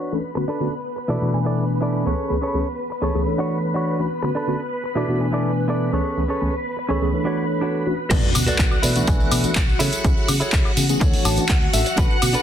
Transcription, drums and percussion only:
8.10 kick, closed hi-hat, crash, tambourine
8.24 tambourine
8.35 open hi-hat, tambourine, high woodblock
8.47 closed hi-hat, tambourine
8.59 kick, clap, tambourine
8.71 tambourine, high woodblock
8.83 open hi-hat, tambourine
8.96 closed hi-hat, tambourine
9.07 kick, closed hi-hat, tambourine
9.20 tambourine
9.32 open hi-hat, tambourine, high woodblock
9.44 closed hi-hat, tambourine
9.55 kick, clap, closed hi-hat, tambourine
9.69 tambourine
9.80 open hi-hat, tambourine
9.93 closed hi-hat, tambourine
10.04 kick, closed hi-hat, tambourine
10.17 tambourine
10.28 open hi-hat, tambourine, high woodblock
10.41 closed hi-hat, tambourine
10.52 kick, clap, tambourine
10.65 tambourine, high woodblock
10.77 open hi-hat, tambourine
10.89 closed hi-hat, tambourine
11.01 kick, closed hi-hat, tambourine
11.13 open hi-hat, tambourine
11.25 open hi-hat, tambourine, high woodblock
11.37 closed hi-hat, tambourine
11.38 tambourine
11.49 kick, clap, closed hi-hat, tambourine
11.62 tambourine
11.73 open hi-hat, tambourine
11.86 closed hi-hat, tambourine
11.97 kick, closed hi-hat, tambourine
12.11 tambourine
12.22 open hi-hat, tambourine, high woodblock
12.34 closed hi-hat, tambourine

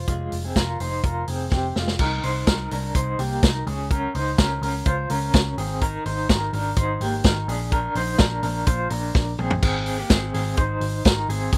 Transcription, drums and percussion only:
0.08 kick, closed hi-hat
0.32 open hi-hat
0.56 kick, snare, closed hi-hat
0.80 open hi-hat
1.04 kick, closed hi-hat
1.27 open hi-hat
1.52 kick, snare
1.76 snare
1.88 snare
1.99 kick, crash
2.23 open hi-hat
2.47 kick, snare, closed hi-hat
2.71 open hi-hat
2.95 kick, closed hi-hat
3.19 open hi-hat
3.43 kick, snare, closed hi-hat
3.67 open hi-hat
3.91 kick, closed hi-hat
4.15 open hi-hat
4.38 kick, snare, closed hi-hat
4.63 open hi-hat
4.85 kick, closed hi-hat
5.10 open hi-hat
5.33 kick, snare, closed hi-hat
5.58 open hi-hat
5.81 kick, closed hi-hat
6.06 open hi-hat
6.29 kick, snare, closed hi-hat
6.53 open hi-hat
6.76 kick, closed hi-hat
7.01 open hi-hat
7.24 kick, snare, closed hi-hat
7.49 open hi-hat
7.72 kick, closed hi-hat
7.95 open hi-hat
8.18 kick, snare, closed hi-hat
8.43 open hi-hat
8.66 kick, closed hi-hat
8.90 open hi-hat
9.15 kick, snare
9.39 mid tom
9.50 floor tom
9.63 kick, crash
9.86 open hi-hat
10.10 kick, snare, closed hi-hat
10.34 open hi-hat
10.57 kick, closed hi-hat
10.81 open hi-hat
11.05 kick, snare, closed hi-hat
11.30 open hi-hat
11.53 kick, closed hi-hat

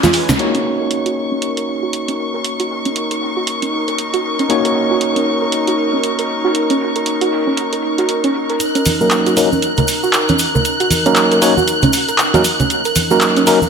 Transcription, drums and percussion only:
0.03 snare, closed hi-hat, high conga, shaker
0.13 snare, closed hi-hat, open hi-hat
0.29 snare, closed hi-hat, low conga, shaker
0.39 closed hi-hat
0.54 snare, closed hi-hat
0.65 snare, closed hi-hat
0.80 snare
0.91 closed hi-hat
1.06 snare, closed hi-hat
1.16 closed hi-hat
1.42 closed hi-hat
1.57 closed hi-hat
1.68 closed hi-hat
1.93 closed hi-hat
2.08 snare, closed hi-hat
2.19 closed hi-hat
2.34 snare
2.44 closed hi-hat
2.60 closed hi-hat
2.70 snare, closed hi-hat
2.85 closed hi-hat
2.96 closed hi-hat
3.11 closed hi-hat
3.21 snare, open hi-hat
3.47 closed hi-hat
3.62 closed hi-hat
3.73 closed hi-hat
3.88 snare, closed hi-hat
3.98 closed hi-hat
4.14 snare, closed hi-hat
4.24 closed hi-hat
4.39 snare, closed hi-hat
4.50 closed hi-hat
4.65 snare, closed hi-hat
4.75 snare, closed hi-hat
4.91 snare
5.01 closed hi-hat
5.16 snare, closed hi-hat
5.27 closed hi-hat
5.52 closed hi-hat
5.67 closed hi-hat
5.77 closed hi-hat
6.03 closed hi-hat
6.19 snare, closed hi-hat
6.29 closed hi-hat
6.45 snare
6.55 closed hi-hat
6.70 closed hi-hat
6.80 snare, closed hi-hat
6.96 closed hi-hat
7.06 closed hi-hat
7.21 closed hi-hat
7.32 snare, open hi-hat
7.57 closed hi-hat
7.73 closed hi-hat
7.82 closed hi-hat
7.98 snare, closed hi-hat
8.09 closed hi-hat
8.23 snare, closed hi-hat
8.34 closed hi-hat
8.50 snare, closed hi-hat
8.60 closed hi-hat, shaker
8.75 closed hi-hat, shaker
8.86 open hi-hat, high conga, shaker
9.01 shaker
9.11 clap, closed hi-hat, shaker
9.26 closed hi-hat, shaker
9.37 open hi-hat, shaker
9.52 high conga, shaker
9.62 closed hi-hat, shaker
9.77 closed hi-hat, low conga, shaker
9.88 open hi-hat, shaker
10.03 shaker
10.13 clap, closed hi-hat, shaker
10.29 closed hi-hat, high conga, shaker
10.39 open hi-hat, shaker
10.55 low conga, shaker
10.65 closed hi-hat, shaker
10.80 closed hi-hat, shaker
10.90 open hi-hat, high conga, shaker
11.06 closed hi-hat, shaker
11.16 clap, closed hi-hat, shaker
11.32 closed hi-hat, shaker
11.42 open hi-hat, shaker
11.57 high conga, shaker
11.68 closed hi-hat, shaker
11.82 closed hi-hat, low conga, shaker
11.93 open hi-hat, shaker
12.08 closed hi-hat, shaker
12.18 clap, closed hi-hat, shaker
12.34 closed hi-hat, high conga, shaker
12.44 open hi-hat, shaker
12.60 closed hi-hat, low conga, shaker
12.70 closed hi-hat, shaker
12.85 closed hi-hat, shaker
12.96 open hi-hat, high conga, shaker
13.10 shaker
13.21 clap, closed hi-hat, shaker
13.37 closed hi-hat, shaker
13.47 open hi-hat, shaker
13.62 high conga, shaker

